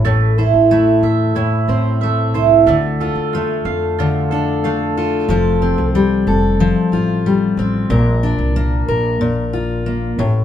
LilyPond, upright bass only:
\new Staff \with { instrumentName = "Upright bass" } { \clef bass \time 4/4 \key f \major \tempo 4 = 92 a,,8. a,,8. e,8. r16 a,,4 c,8 | d,8. e,8. f,2~ f,8 | f,,8. c,8. f,,8. r16 a,,4 a,,8 | bes,,8. c,8. bes,,2 a,,8 | }